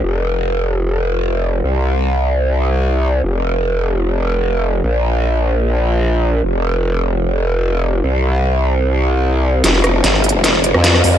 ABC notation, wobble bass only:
X:1
M:4/4
L:1/16
Q:1/4=150
K:Cphr
V:1 name="Wobble bass" clef=bass
F,,,16 | C,,16 | F,,,16 | B,,,16 |
F,,,16 | C,,16 | F,,,4 G,,,3 F,,,4 F,,3 F,,2 |]